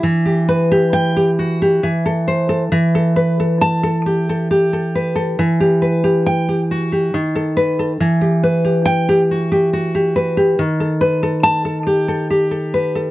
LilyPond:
\new Staff \with { instrumentName = "Nylon-string guitar" } { \time 3/4 \key e \minor \tempo 4 = 69 << { r4 g''8 r4 c''8 | r4 a''8 r4. | r4 g''8 r4 b'8 | r4 g''8 r4. |
r4 a''8 r4. | } \\ { e16 g'16 b'16 g'8 g'16 fis'16 g'16 e16 a'8 a'16 | e16 a'16 b'16 a'8 a'16 g'16 a'16 g'16 a'16 b'16 a'16 | e16 g'16 b'16 g'8 g'16 fis'16 g'16 dis16 a'8 a'16 | e16 g'16 b'16 g'8 g'16 fis'16 g'16 fis'16 g'16 b'16 g'16 |
dis16 a'16 b'16 a'8 a'16 g'16 a'16 g'16 a'16 b'16 a'16 | } >> }